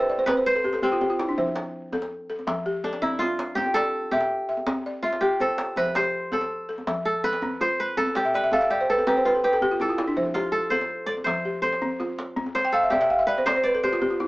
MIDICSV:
0, 0, Header, 1, 4, 480
1, 0, Start_track
1, 0, Tempo, 366524
1, 1803, Time_signature, 12, 3, 24, 8
1, 18700, End_track
2, 0, Start_track
2, 0, Title_t, "Balafon"
2, 0, Program_c, 0, 12
2, 4, Note_on_c, 0, 72, 70
2, 126, Note_on_c, 0, 74, 72
2, 228, Note_off_c, 0, 72, 0
2, 247, Note_on_c, 0, 72, 73
2, 349, Note_off_c, 0, 74, 0
2, 371, Note_on_c, 0, 60, 84
2, 371, Note_on_c, 0, 71, 74
2, 469, Note_off_c, 0, 72, 0
2, 488, Note_on_c, 0, 72, 65
2, 591, Note_off_c, 0, 71, 0
2, 609, Note_on_c, 0, 71, 67
2, 709, Note_off_c, 0, 72, 0
2, 730, Note_on_c, 0, 69, 70
2, 830, Note_off_c, 0, 71, 0
2, 846, Note_on_c, 0, 67, 71
2, 847, Note_off_c, 0, 60, 0
2, 951, Note_off_c, 0, 69, 0
2, 969, Note_on_c, 0, 69, 70
2, 1068, Note_off_c, 0, 67, 0
2, 1085, Note_on_c, 0, 67, 87
2, 1190, Note_off_c, 0, 69, 0
2, 1207, Note_on_c, 0, 65, 75
2, 1308, Note_off_c, 0, 67, 0
2, 1327, Note_on_c, 0, 67, 64
2, 1423, Note_off_c, 0, 65, 0
2, 1439, Note_on_c, 0, 65, 72
2, 1548, Note_off_c, 0, 67, 0
2, 1562, Note_on_c, 0, 64, 69
2, 1664, Note_off_c, 0, 65, 0
2, 1685, Note_on_c, 0, 62, 67
2, 1786, Note_off_c, 0, 64, 0
2, 1805, Note_on_c, 0, 53, 87
2, 1806, Note_on_c, 0, 72, 72
2, 1907, Note_off_c, 0, 62, 0
2, 2284, Note_off_c, 0, 53, 0
2, 2524, Note_off_c, 0, 72, 0
2, 2527, Note_on_c, 0, 69, 86
2, 2991, Note_off_c, 0, 69, 0
2, 3007, Note_on_c, 0, 69, 65
2, 3234, Note_on_c, 0, 53, 82
2, 3482, Note_on_c, 0, 67, 69
2, 3709, Note_off_c, 0, 69, 0
2, 3717, Note_off_c, 0, 53, 0
2, 3725, Note_on_c, 0, 69, 67
2, 3969, Note_on_c, 0, 60, 92
2, 4201, Note_off_c, 0, 67, 0
2, 4211, Note_on_c, 0, 65, 64
2, 4442, Note_off_c, 0, 69, 0
2, 4444, Note_off_c, 0, 60, 0
2, 4685, Note_on_c, 0, 79, 79
2, 4686, Note_on_c, 0, 60, 85
2, 4925, Note_off_c, 0, 65, 0
2, 4926, Note_on_c, 0, 74, 68
2, 5162, Note_off_c, 0, 60, 0
2, 5401, Note_off_c, 0, 79, 0
2, 5405, Note_on_c, 0, 76, 87
2, 5642, Note_off_c, 0, 74, 0
2, 5862, Note_off_c, 0, 76, 0
2, 5878, Note_on_c, 0, 76, 64
2, 6118, Note_on_c, 0, 60, 87
2, 6366, Note_on_c, 0, 74, 60
2, 6583, Note_off_c, 0, 76, 0
2, 6597, Note_off_c, 0, 60, 0
2, 6599, Note_on_c, 0, 76, 68
2, 6840, Note_on_c, 0, 67, 91
2, 7081, Note_off_c, 0, 74, 0
2, 7081, Note_on_c, 0, 72, 65
2, 7317, Note_off_c, 0, 76, 0
2, 7318, Note_off_c, 0, 67, 0
2, 7547, Note_off_c, 0, 72, 0
2, 7561, Note_on_c, 0, 53, 83
2, 7563, Note_on_c, 0, 72, 75
2, 7808, Note_on_c, 0, 67, 63
2, 8038, Note_off_c, 0, 53, 0
2, 8279, Note_off_c, 0, 72, 0
2, 8285, Note_on_c, 0, 69, 88
2, 8521, Note_off_c, 0, 67, 0
2, 8746, Note_off_c, 0, 69, 0
2, 8761, Note_on_c, 0, 69, 62
2, 9000, Note_on_c, 0, 53, 82
2, 9469, Note_off_c, 0, 69, 0
2, 9477, Note_off_c, 0, 53, 0
2, 9485, Note_on_c, 0, 69, 70
2, 9725, Note_on_c, 0, 60, 83
2, 9963, Note_on_c, 0, 65, 62
2, 10199, Note_off_c, 0, 60, 0
2, 10199, Note_off_c, 0, 69, 0
2, 10441, Note_on_c, 0, 60, 87
2, 10678, Note_off_c, 0, 65, 0
2, 10805, Note_on_c, 0, 76, 73
2, 10918, Note_off_c, 0, 60, 0
2, 10927, Note_on_c, 0, 74, 72
2, 11023, Note_off_c, 0, 76, 0
2, 11050, Note_on_c, 0, 76, 73
2, 11144, Note_off_c, 0, 74, 0
2, 11156, Note_off_c, 0, 76, 0
2, 11172, Note_on_c, 0, 76, 76
2, 11172, Note_on_c, 0, 77, 71
2, 11277, Note_off_c, 0, 76, 0
2, 11292, Note_on_c, 0, 76, 71
2, 11387, Note_off_c, 0, 77, 0
2, 11412, Note_on_c, 0, 74, 71
2, 11507, Note_off_c, 0, 76, 0
2, 11533, Note_on_c, 0, 72, 68
2, 11627, Note_off_c, 0, 74, 0
2, 11650, Note_on_c, 0, 71, 74
2, 11748, Note_off_c, 0, 72, 0
2, 11770, Note_on_c, 0, 69, 68
2, 11866, Note_off_c, 0, 71, 0
2, 11884, Note_on_c, 0, 60, 92
2, 11884, Note_on_c, 0, 71, 75
2, 11986, Note_off_c, 0, 69, 0
2, 12008, Note_on_c, 0, 72, 69
2, 12103, Note_off_c, 0, 71, 0
2, 12127, Note_on_c, 0, 71, 73
2, 12225, Note_off_c, 0, 72, 0
2, 12243, Note_on_c, 0, 69, 64
2, 12344, Note_off_c, 0, 71, 0
2, 12359, Note_off_c, 0, 60, 0
2, 12366, Note_on_c, 0, 71, 73
2, 12462, Note_off_c, 0, 69, 0
2, 12485, Note_on_c, 0, 69, 72
2, 12584, Note_off_c, 0, 71, 0
2, 12601, Note_on_c, 0, 67, 91
2, 12703, Note_off_c, 0, 69, 0
2, 12721, Note_on_c, 0, 65, 66
2, 12822, Note_off_c, 0, 67, 0
2, 12845, Note_on_c, 0, 64, 67
2, 12941, Note_off_c, 0, 65, 0
2, 12958, Note_on_c, 0, 65, 69
2, 13063, Note_off_c, 0, 64, 0
2, 13079, Note_on_c, 0, 64, 72
2, 13180, Note_off_c, 0, 65, 0
2, 13195, Note_on_c, 0, 62, 74
2, 13300, Note_off_c, 0, 64, 0
2, 13317, Note_on_c, 0, 72, 75
2, 13319, Note_on_c, 0, 53, 89
2, 13418, Note_off_c, 0, 62, 0
2, 13556, Note_on_c, 0, 67, 66
2, 13797, Note_off_c, 0, 53, 0
2, 14036, Note_off_c, 0, 72, 0
2, 14036, Note_on_c, 0, 69, 89
2, 14276, Note_off_c, 0, 67, 0
2, 14501, Note_off_c, 0, 69, 0
2, 14517, Note_on_c, 0, 69, 62
2, 14747, Note_on_c, 0, 53, 91
2, 14996, Note_on_c, 0, 67, 57
2, 15218, Note_off_c, 0, 69, 0
2, 15232, Note_off_c, 0, 53, 0
2, 15234, Note_on_c, 0, 69, 69
2, 15476, Note_on_c, 0, 60, 91
2, 15711, Note_on_c, 0, 65, 70
2, 15717, Note_off_c, 0, 67, 0
2, 15956, Note_off_c, 0, 69, 0
2, 15957, Note_off_c, 0, 60, 0
2, 16193, Note_on_c, 0, 60, 84
2, 16436, Note_off_c, 0, 65, 0
2, 16562, Note_on_c, 0, 79, 78
2, 16677, Note_off_c, 0, 60, 0
2, 16680, Note_on_c, 0, 77, 74
2, 16784, Note_off_c, 0, 79, 0
2, 16804, Note_on_c, 0, 76, 66
2, 16903, Note_off_c, 0, 76, 0
2, 16903, Note_off_c, 0, 77, 0
2, 16918, Note_on_c, 0, 76, 81
2, 16922, Note_on_c, 0, 74, 72
2, 17020, Note_off_c, 0, 76, 0
2, 17036, Note_on_c, 0, 76, 76
2, 17145, Note_off_c, 0, 74, 0
2, 17159, Note_on_c, 0, 77, 66
2, 17258, Note_off_c, 0, 76, 0
2, 17273, Note_on_c, 0, 76, 75
2, 17383, Note_off_c, 0, 77, 0
2, 17397, Note_on_c, 0, 74, 76
2, 17500, Note_off_c, 0, 76, 0
2, 17522, Note_on_c, 0, 72, 66
2, 17623, Note_off_c, 0, 74, 0
2, 17637, Note_on_c, 0, 60, 81
2, 17637, Note_on_c, 0, 74, 75
2, 17745, Note_off_c, 0, 72, 0
2, 17763, Note_on_c, 0, 72, 67
2, 17863, Note_off_c, 0, 74, 0
2, 17880, Note_on_c, 0, 71, 69
2, 17986, Note_off_c, 0, 72, 0
2, 18003, Note_on_c, 0, 69, 68
2, 18105, Note_off_c, 0, 71, 0
2, 18120, Note_off_c, 0, 60, 0
2, 18120, Note_on_c, 0, 67, 74
2, 18226, Note_off_c, 0, 69, 0
2, 18237, Note_on_c, 0, 65, 74
2, 18340, Note_off_c, 0, 67, 0
2, 18356, Note_on_c, 0, 67, 81
2, 18457, Note_off_c, 0, 65, 0
2, 18473, Note_on_c, 0, 65, 67
2, 18599, Note_on_c, 0, 64, 67
2, 18700, Note_off_c, 0, 64, 0
2, 18700, Note_off_c, 0, 65, 0
2, 18700, Note_off_c, 0, 67, 0
2, 18700, End_track
3, 0, Start_track
3, 0, Title_t, "Kora"
3, 0, Program_c, 1, 46
3, 0, Note_on_c, 1, 60, 82
3, 0, Note_on_c, 1, 62, 95
3, 0, Note_on_c, 1, 64, 84
3, 0, Note_on_c, 1, 67, 86
3, 0, Note_on_c, 1, 69, 82
3, 174, Note_off_c, 1, 62, 0
3, 342, Note_on_c, 1, 71, 103
3, 420, Note_off_c, 1, 60, 0
3, 420, Note_off_c, 1, 71, 0
3, 606, Note_on_c, 1, 72, 107
3, 1090, Note_on_c, 1, 60, 78
3, 1455, Note_off_c, 1, 64, 0
3, 1472, Note_off_c, 1, 67, 0
3, 1579, Note_off_c, 1, 69, 0
3, 2161, Note_off_c, 1, 72, 0
3, 3447, Note_off_c, 1, 60, 0
3, 3720, Note_on_c, 1, 62, 79
3, 3953, Note_on_c, 1, 64, 87
3, 4176, Note_on_c, 1, 65, 101
3, 4255, Note_off_c, 1, 64, 0
3, 4653, Note_on_c, 1, 67, 98
3, 4899, Note_on_c, 1, 69, 116
3, 5382, Note_off_c, 1, 67, 0
3, 5388, Note_on_c, 1, 67, 85
3, 5920, Note_off_c, 1, 62, 0
3, 6158, Note_off_c, 1, 65, 0
3, 6582, Note_on_c, 1, 65, 83
3, 6625, Note_off_c, 1, 69, 0
3, 6814, Note_off_c, 1, 67, 0
3, 6819, Note_on_c, 1, 67, 86
3, 7087, Note_on_c, 1, 69, 95
3, 7558, Note_on_c, 1, 71, 105
3, 7803, Note_on_c, 1, 72, 110
3, 7882, Note_off_c, 1, 71, 0
3, 8286, Note_off_c, 1, 69, 0
3, 8292, Note_on_c, 1, 69, 77
3, 8564, Note_off_c, 1, 65, 0
3, 8669, Note_off_c, 1, 67, 0
3, 9233, Note_off_c, 1, 69, 0
3, 9238, Note_on_c, 1, 69, 90
3, 9359, Note_off_c, 1, 72, 0
3, 9481, Note_on_c, 1, 71, 100
3, 9967, Note_on_c, 1, 72, 95
3, 10046, Note_off_c, 1, 71, 0
3, 10213, Note_on_c, 1, 71, 97
3, 10291, Note_off_c, 1, 72, 0
3, 10437, Note_off_c, 1, 69, 0
3, 10442, Note_on_c, 1, 69, 104
3, 10690, Note_on_c, 1, 67, 87
3, 10931, Note_off_c, 1, 71, 0
3, 10937, Note_on_c, 1, 71, 96
3, 11163, Note_off_c, 1, 69, 0
3, 11168, Note_on_c, 1, 69, 91
3, 11394, Note_off_c, 1, 67, 0
3, 11399, Note_on_c, 1, 67, 77
3, 11647, Note_off_c, 1, 69, 0
3, 11652, Note_on_c, 1, 69, 94
3, 11874, Note_off_c, 1, 67, 0
3, 11880, Note_on_c, 1, 67, 86
3, 12117, Note_on_c, 1, 65, 78
3, 12196, Note_off_c, 1, 65, 0
3, 12359, Note_off_c, 1, 67, 0
3, 12364, Note_on_c, 1, 67, 90
3, 12547, Note_off_c, 1, 71, 0
3, 12847, Note_off_c, 1, 69, 0
3, 12852, Note_on_c, 1, 69, 75
3, 13543, Note_on_c, 1, 65, 80
3, 13770, Note_off_c, 1, 69, 0
3, 13776, Note_on_c, 1, 69, 90
3, 14016, Note_on_c, 1, 72, 94
3, 14213, Note_off_c, 1, 67, 0
3, 14489, Note_on_c, 1, 74, 98
3, 14568, Note_off_c, 1, 74, 0
3, 14718, Note_off_c, 1, 72, 0
3, 14723, Note_on_c, 1, 72, 97
3, 15212, Note_off_c, 1, 72, 0
3, 15217, Note_on_c, 1, 72, 94
3, 15501, Note_off_c, 1, 69, 0
3, 15525, Note_off_c, 1, 65, 0
3, 16428, Note_off_c, 1, 72, 0
3, 16433, Note_on_c, 1, 72, 85
3, 16664, Note_on_c, 1, 69, 89
3, 16897, Note_on_c, 1, 67, 79
3, 17375, Note_on_c, 1, 71, 86
3, 17454, Note_off_c, 1, 72, 0
3, 17625, Note_on_c, 1, 72, 104
3, 17704, Note_off_c, 1, 71, 0
3, 17857, Note_on_c, 1, 74, 90
3, 18112, Note_off_c, 1, 72, 0
3, 18118, Note_on_c, 1, 72, 80
3, 18390, Note_off_c, 1, 69, 0
3, 18700, Note_off_c, 1, 67, 0
3, 18700, Note_off_c, 1, 72, 0
3, 18700, Note_off_c, 1, 74, 0
3, 18700, End_track
4, 0, Start_track
4, 0, Title_t, "Djembe"
4, 125, Note_on_c, 9, 62, 25
4, 236, Note_on_c, 9, 63, 51
4, 256, Note_off_c, 9, 62, 0
4, 358, Note_on_c, 9, 62, 77
4, 358, Note_on_c, 9, 64, 72
4, 367, Note_off_c, 9, 63, 0
4, 489, Note_off_c, 9, 62, 0
4, 489, Note_off_c, 9, 64, 0
4, 721, Note_on_c, 9, 62, 24
4, 838, Note_off_c, 9, 62, 0
4, 838, Note_on_c, 9, 62, 19
4, 838, Note_on_c, 9, 63, 62
4, 953, Note_off_c, 9, 62, 0
4, 953, Note_on_c, 9, 62, 50
4, 969, Note_off_c, 9, 63, 0
4, 1076, Note_on_c, 9, 64, 67
4, 1084, Note_off_c, 9, 62, 0
4, 1207, Note_off_c, 9, 64, 0
4, 1323, Note_on_c, 9, 63, 73
4, 1446, Note_on_c, 9, 62, 20
4, 1454, Note_off_c, 9, 63, 0
4, 1564, Note_off_c, 9, 62, 0
4, 1564, Note_on_c, 9, 62, 64
4, 1695, Note_off_c, 9, 62, 0
4, 1800, Note_on_c, 9, 62, 22
4, 1800, Note_on_c, 9, 64, 66
4, 1920, Note_on_c, 9, 63, 55
4, 1931, Note_off_c, 9, 62, 0
4, 1931, Note_off_c, 9, 64, 0
4, 2037, Note_on_c, 9, 62, 68
4, 2051, Note_off_c, 9, 63, 0
4, 2157, Note_off_c, 9, 62, 0
4, 2157, Note_on_c, 9, 62, 18
4, 2288, Note_off_c, 9, 62, 0
4, 2521, Note_on_c, 9, 63, 65
4, 2521, Note_on_c, 9, 64, 62
4, 2644, Note_on_c, 9, 62, 49
4, 2652, Note_off_c, 9, 63, 0
4, 2652, Note_off_c, 9, 64, 0
4, 2775, Note_off_c, 9, 62, 0
4, 3009, Note_on_c, 9, 62, 23
4, 3127, Note_on_c, 9, 63, 54
4, 3140, Note_off_c, 9, 62, 0
4, 3241, Note_on_c, 9, 62, 71
4, 3241, Note_on_c, 9, 64, 71
4, 3258, Note_off_c, 9, 63, 0
4, 3372, Note_off_c, 9, 62, 0
4, 3372, Note_off_c, 9, 64, 0
4, 3599, Note_on_c, 9, 62, 23
4, 3716, Note_off_c, 9, 62, 0
4, 3716, Note_on_c, 9, 62, 22
4, 3716, Note_on_c, 9, 63, 62
4, 3835, Note_off_c, 9, 62, 0
4, 3835, Note_on_c, 9, 62, 55
4, 3847, Note_off_c, 9, 63, 0
4, 3957, Note_on_c, 9, 64, 66
4, 3965, Note_off_c, 9, 62, 0
4, 4088, Note_off_c, 9, 64, 0
4, 4194, Note_on_c, 9, 63, 78
4, 4318, Note_on_c, 9, 62, 21
4, 4325, Note_off_c, 9, 63, 0
4, 4440, Note_off_c, 9, 62, 0
4, 4440, Note_on_c, 9, 62, 79
4, 4571, Note_off_c, 9, 62, 0
4, 4672, Note_on_c, 9, 64, 74
4, 4791, Note_on_c, 9, 62, 23
4, 4791, Note_on_c, 9, 63, 56
4, 4803, Note_off_c, 9, 64, 0
4, 4917, Note_off_c, 9, 62, 0
4, 4917, Note_on_c, 9, 62, 71
4, 4922, Note_off_c, 9, 63, 0
4, 5048, Note_off_c, 9, 62, 0
4, 5274, Note_on_c, 9, 62, 24
4, 5395, Note_on_c, 9, 63, 62
4, 5395, Note_on_c, 9, 64, 70
4, 5405, Note_off_c, 9, 62, 0
4, 5508, Note_on_c, 9, 62, 58
4, 5525, Note_off_c, 9, 63, 0
4, 5525, Note_off_c, 9, 64, 0
4, 5639, Note_off_c, 9, 62, 0
4, 5756, Note_on_c, 9, 62, 21
4, 5887, Note_off_c, 9, 62, 0
4, 5986, Note_on_c, 9, 63, 57
4, 6110, Note_on_c, 9, 62, 77
4, 6110, Note_on_c, 9, 64, 74
4, 6117, Note_off_c, 9, 63, 0
4, 6241, Note_off_c, 9, 62, 0
4, 6241, Note_off_c, 9, 64, 0
4, 6586, Note_on_c, 9, 62, 22
4, 6586, Note_on_c, 9, 63, 70
4, 6713, Note_off_c, 9, 62, 0
4, 6713, Note_on_c, 9, 62, 54
4, 6717, Note_off_c, 9, 63, 0
4, 6833, Note_off_c, 9, 62, 0
4, 6833, Note_on_c, 9, 62, 24
4, 6833, Note_on_c, 9, 64, 67
4, 6954, Note_off_c, 9, 62, 0
4, 6954, Note_on_c, 9, 62, 24
4, 6964, Note_off_c, 9, 64, 0
4, 7074, Note_on_c, 9, 63, 76
4, 7085, Note_off_c, 9, 62, 0
4, 7192, Note_on_c, 9, 62, 22
4, 7205, Note_off_c, 9, 63, 0
4, 7308, Note_off_c, 9, 62, 0
4, 7308, Note_on_c, 9, 62, 71
4, 7428, Note_off_c, 9, 62, 0
4, 7428, Note_on_c, 9, 62, 22
4, 7547, Note_off_c, 9, 62, 0
4, 7547, Note_on_c, 9, 62, 24
4, 7547, Note_on_c, 9, 64, 75
4, 7668, Note_on_c, 9, 63, 63
4, 7678, Note_off_c, 9, 62, 0
4, 7678, Note_off_c, 9, 64, 0
4, 7794, Note_on_c, 9, 62, 71
4, 7799, Note_off_c, 9, 63, 0
4, 7925, Note_off_c, 9, 62, 0
4, 8273, Note_on_c, 9, 63, 71
4, 8273, Note_on_c, 9, 64, 64
4, 8398, Note_on_c, 9, 62, 49
4, 8404, Note_off_c, 9, 63, 0
4, 8404, Note_off_c, 9, 64, 0
4, 8529, Note_off_c, 9, 62, 0
4, 8754, Note_on_c, 9, 62, 25
4, 8878, Note_on_c, 9, 63, 60
4, 8885, Note_off_c, 9, 62, 0
4, 9000, Note_on_c, 9, 62, 74
4, 9000, Note_on_c, 9, 64, 77
4, 9009, Note_off_c, 9, 63, 0
4, 9131, Note_off_c, 9, 62, 0
4, 9131, Note_off_c, 9, 64, 0
4, 9363, Note_on_c, 9, 62, 24
4, 9477, Note_off_c, 9, 62, 0
4, 9477, Note_on_c, 9, 62, 20
4, 9477, Note_on_c, 9, 63, 68
4, 9596, Note_off_c, 9, 62, 0
4, 9596, Note_on_c, 9, 62, 56
4, 9608, Note_off_c, 9, 63, 0
4, 9718, Note_on_c, 9, 64, 77
4, 9727, Note_off_c, 9, 62, 0
4, 9849, Note_off_c, 9, 64, 0
4, 9963, Note_on_c, 9, 63, 76
4, 10088, Note_on_c, 9, 62, 22
4, 10094, Note_off_c, 9, 63, 0
4, 10219, Note_off_c, 9, 62, 0
4, 10442, Note_on_c, 9, 62, 25
4, 10442, Note_on_c, 9, 64, 78
4, 10560, Note_on_c, 9, 63, 62
4, 10573, Note_off_c, 9, 62, 0
4, 10573, Note_off_c, 9, 64, 0
4, 10675, Note_on_c, 9, 62, 74
4, 10691, Note_off_c, 9, 63, 0
4, 10792, Note_off_c, 9, 62, 0
4, 10792, Note_on_c, 9, 62, 23
4, 10923, Note_off_c, 9, 62, 0
4, 11153, Note_on_c, 9, 63, 68
4, 11153, Note_on_c, 9, 64, 75
4, 11274, Note_on_c, 9, 62, 54
4, 11284, Note_off_c, 9, 63, 0
4, 11284, Note_off_c, 9, 64, 0
4, 11405, Note_off_c, 9, 62, 0
4, 11639, Note_on_c, 9, 62, 22
4, 11759, Note_on_c, 9, 63, 57
4, 11770, Note_off_c, 9, 62, 0
4, 11877, Note_on_c, 9, 62, 75
4, 11877, Note_on_c, 9, 64, 72
4, 11890, Note_off_c, 9, 63, 0
4, 12007, Note_off_c, 9, 62, 0
4, 12007, Note_off_c, 9, 64, 0
4, 12243, Note_on_c, 9, 62, 23
4, 12358, Note_off_c, 9, 62, 0
4, 12358, Note_on_c, 9, 62, 19
4, 12358, Note_on_c, 9, 63, 60
4, 12478, Note_off_c, 9, 62, 0
4, 12478, Note_on_c, 9, 62, 51
4, 12488, Note_off_c, 9, 63, 0
4, 12590, Note_on_c, 9, 64, 65
4, 12609, Note_off_c, 9, 62, 0
4, 12721, Note_off_c, 9, 64, 0
4, 12831, Note_on_c, 9, 63, 69
4, 12948, Note_on_c, 9, 62, 20
4, 12962, Note_off_c, 9, 63, 0
4, 13073, Note_off_c, 9, 62, 0
4, 13073, Note_on_c, 9, 62, 73
4, 13204, Note_off_c, 9, 62, 0
4, 13309, Note_on_c, 9, 62, 23
4, 13309, Note_on_c, 9, 64, 67
4, 13431, Note_on_c, 9, 63, 53
4, 13440, Note_off_c, 9, 62, 0
4, 13440, Note_off_c, 9, 64, 0
4, 13551, Note_on_c, 9, 62, 64
4, 13562, Note_off_c, 9, 63, 0
4, 13675, Note_off_c, 9, 62, 0
4, 13675, Note_on_c, 9, 62, 20
4, 13806, Note_off_c, 9, 62, 0
4, 14034, Note_on_c, 9, 63, 63
4, 14034, Note_on_c, 9, 64, 63
4, 14159, Note_on_c, 9, 62, 47
4, 14165, Note_off_c, 9, 63, 0
4, 14165, Note_off_c, 9, 64, 0
4, 14290, Note_off_c, 9, 62, 0
4, 14519, Note_on_c, 9, 62, 22
4, 14629, Note_on_c, 9, 63, 54
4, 14650, Note_off_c, 9, 62, 0
4, 14756, Note_on_c, 9, 62, 71
4, 14756, Note_on_c, 9, 64, 73
4, 14760, Note_off_c, 9, 63, 0
4, 14887, Note_off_c, 9, 62, 0
4, 14887, Note_off_c, 9, 64, 0
4, 15116, Note_on_c, 9, 62, 23
4, 15236, Note_off_c, 9, 62, 0
4, 15236, Note_on_c, 9, 62, 22
4, 15236, Note_on_c, 9, 63, 65
4, 15355, Note_off_c, 9, 62, 0
4, 15355, Note_on_c, 9, 62, 54
4, 15367, Note_off_c, 9, 63, 0
4, 15475, Note_on_c, 9, 64, 68
4, 15486, Note_off_c, 9, 62, 0
4, 15606, Note_off_c, 9, 64, 0
4, 15718, Note_on_c, 9, 63, 69
4, 15839, Note_on_c, 9, 62, 20
4, 15849, Note_off_c, 9, 63, 0
4, 15958, Note_off_c, 9, 62, 0
4, 15958, Note_on_c, 9, 62, 73
4, 16089, Note_off_c, 9, 62, 0
4, 16194, Note_on_c, 9, 64, 75
4, 16319, Note_on_c, 9, 63, 60
4, 16325, Note_off_c, 9, 64, 0
4, 16438, Note_on_c, 9, 62, 69
4, 16450, Note_off_c, 9, 63, 0
4, 16569, Note_off_c, 9, 62, 0
4, 16919, Note_on_c, 9, 63, 68
4, 16919, Note_on_c, 9, 64, 71
4, 17041, Note_on_c, 9, 62, 58
4, 17050, Note_off_c, 9, 63, 0
4, 17050, Note_off_c, 9, 64, 0
4, 17172, Note_off_c, 9, 62, 0
4, 17286, Note_on_c, 9, 62, 22
4, 17417, Note_off_c, 9, 62, 0
4, 17520, Note_on_c, 9, 63, 55
4, 17636, Note_on_c, 9, 62, 86
4, 17636, Note_on_c, 9, 64, 73
4, 17651, Note_off_c, 9, 63, 0
4, 17767, Note_off_c, 9, 62, 0
4, 17767, Note_off_c, 9, 64, 0
4, 18117, Note_on_c, 9, 63, 73
4, 18239, Note_on_c, 9, 62, 57
4, 18248, Note_off_c, 9, 63, 0
4, 18357, Note_on_c, 9, 64, 78
4, 18370, Note_off_c, 9, 62, 0
4, 18477, Note_on_c, 9, 62, 28
4, 18488, Note_off_c, 9, 64, 0
4, 18596, Note_off_c, 9, 62, 0
4, 18596, Note_on_c, 9, 62, 26
4, 18596, Note_on_c, 9, 63, 77
4, 18700, Note_off_c, 9, 62, 0
4, 18700, Note_off_c, 9, 63, 0
4, 18700, End_track
0, 0, End_of_file